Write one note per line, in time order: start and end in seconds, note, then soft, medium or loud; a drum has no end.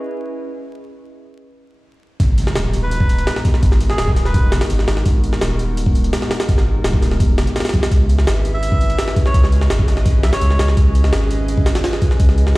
0.00 0.77 C#4 medium
0.00 0.77 E4 medium
0.00 0.77 G#4 medium
0.00 0.77 B4 medium
0.00 0.77 D#5 medium
2.20 2.54 G#1 medium
2.20 3.25 G#3 medium
2.20 3.25 B3 medium
2.20 3.25 D#4 medium
2.20 3.25 F#4 medium
2.20 3.25 A#5 medium
2.20 kick loud
2.20 open hi-hat medium
2.20 impact medium
2.38 open hi-hat medium
2.47 snare medium
2.55 3.26 D#1 medium
2.55 snare loud
2.55 open hi-hat medium
2.74 open hi-hat medium
2.83 3.33 B4 medium
2.91 open hi-hat medium
3.00 kick loud
3.09 open hi-hat medium
3.19 closed hi-hat soft
3.27 snare loud
3.27 open hi-hat medium
3.36 snare medium
3.45 kick loud
3.45 open hi-hat medium
3.54 snare soft
3.63 3.97 G#1 loud
3.63 4.68 G#3 medium
3.63 4.68 B3 medium
3.63 4.68 D#4 medium
3.63 4.68 F#4 medium
3.63 4.68 A#4 medium
3.63 kick loud
3.63 open hi-hat medium
3.72 snare soft
3.80 open hi-hat medium
3.90 4.11 G#4 medium
3.90 snare medium
3.98 4.54 D#1 loud
3.98 snare loud
3.98 open hi-hat medium
4.08 kick medium
4.16 snare soft
4.16 open hi-hat medium
4.25 4.52 B4 loud
4.25 snare soft
4.34 kick loud
4.34 open hi-hat medium
4.52 4.60 G#1 medium
4.52 snare loud
4.52 open hi-hat medium
4.61 snare loud
4.61 open hi-hat medium
4.70 4.86 G#1 loud
4.70 open hi-hat medium
4.79 snare soft
4.88 5.04 G#1 medium
4.88 snare loud
4.88 open hi-hat medium
4.97 snare medium
5.06 5.40 G#1 medium
5.06 6.11 G#3 medium
5.06 6.11 B3 medium
5.06 6.11 D#4 medium
5.06 6.11 F#4 medium
5.06 6.11 A#4 loud
5.06 kick loud
5.06 open hi-hat medium
5.24 open hi-hat medium
5.33 snare medium
5.41 6.12 D#1 loud
5.41 snare loud
5.41 open hi-hat medium
5.59 open hi-hat medium
5.77 open hi-hat medium
5.86 kick loud
5.95 open hi-hat medium
6.04 closed hi-hat soft
6.13 snare loud
6.13 open hi-hat medium
6.22 snare medium
6.31 snare loud
6.31 open hi-hat medium
6.40 snare loud
6.40 open hi-hat medium
6.49 6.83 G#1 medium
6.49 7.54 G#3 medium
6.49 7.54 B3 medium
6.49 7.54 D#4 medium
6.49 7.54 F#4 medium
6.49 7.54 A#4 medium
6.49 kick loud
6.49 open hi-hat medium
6.58 snare soft
6.84 7.39 D#1 loud
6.84 snare loud
6.84 open hi-hat medium
6.93 kick loud
7.02 snare soft
7.02 open hi-hat medium
7.11 snare soft
7.20 kick loud
7.20 open hi-hat medium
7.38 7.46 G#1 medium
7.38 snare loud
7.38 open hi-hat medium
7.47 closed hi-hat soft
7.56 snare medium
7.56 open hi-hat medium
7.60 snare medium
7.60 open hi-hat medium
7.65 snare medium
7.65 open hi-hat medium
7.69 snare medium
7.69 open hi-hat medium
7.74 7.82 B1 medium
7.74 kick medium
7.74 open hi-hat medium
7.83 snare loud
7.83 open hi-hat medium
7.91 8.26 C#2 loud
7.91 8.97 C#4 medium
7.91 8.97 E4 medium
7.91 8.97 G#4 medium
7.91 8.97 B4 medium
7.91 8.97 E5 medium
7.91 kick loud
7.91 open hi-hat medium
8.09 open hi-hat medium
8.19 snare medium
8.27 8.97 G#1 loud
8.27 snare loud
8.27 open hi-hat medium
8.45 open hi-hat medium
8.54 9.04 E5 medium
8.63 open hi-hat medium
8.72 kick medium
8.81 open hi-hat medium
8.90 closed hi-hat soft
8.99 snare loud
8.99 open hi-hat medium
9.08 snare medium
9.16 kick medium
9.16 open hi-hat medium
9.26 9.47 C#5 medium
9.26 snare soft
9.34 9.69 C#2 medium
9.34 10.39 C#4 medium
9.34 10.39 E4 medium
9.34 10.39 G#4 medium
9.34 10.39 B4 medium
9.34 10.39 D#5 medium
9.34 kick loud
9.34 open hi-hat medium
9.44 snare soft
9.52 open hi-hat medium
9.61 snare medium
9.70 10.25 G#1 loud
9.70 snare loud
9.70 open hi-hat medium
9.79 kick medium
9.88 snare soft
9.88 open hi-hat medium
9.97 snare soft
10.06 kick loud
10.06 open hi-hat medium
10.23 10.32 C#2 medium
10.23 10.31 E5 medium
10.23 snare loud
10.23 open hi-hat medium
10.32 10.68 C#5 medium
10.32 snare loud
10.32 open hi-hat medium
10.41 10.57 C#2 loud
10.41 open hi-hat medium
10.51 snare soft
10.59 10.75 C#2 medium
10.59 snare loud
10.59 open hi-hat medium
10.68 snare soft
10.77 11.11 C#2 loud
10.77 11.82 C#4 medium
10.77 11.82 E4 medium
10.77 11.82 G#4 medium
10.77 11.82 B4 medium
10.77 11.82 D#5 medium
10.77 kick loud
10.77 open hi-hat medium
10.95 open hi-hat medium
11.04 snare medium
11.13 11.83 G#1 loud
11.13 snare loud
11.13 open hi-hat medium
11.31 open hi-hat medium
11.48 open hi-hat medium
11.58 kick loud
11.66 snare loud
11.66 open hi-hat medium
11.75 snare loud
11.75 open hi-hat medium
11.84 snare loud
11.84 open hi-hat medium
11.93 snare medium
12.02 kick loud
12.02 open hi-hat medium
12.11 snare soft
12.20 12.54 C#2 loud
12.20 12.58 C#4 medium
12.20 12.58 E4 medium
12.20 12.58 G#4 medium
12.20 12.58 B4 medium
12.20 12.58 D#5 loud
12.20 kick loud
12.20 open hi-hat medium
12.29 snare soft
12.38 open hi-hat medium
12.47 snare medium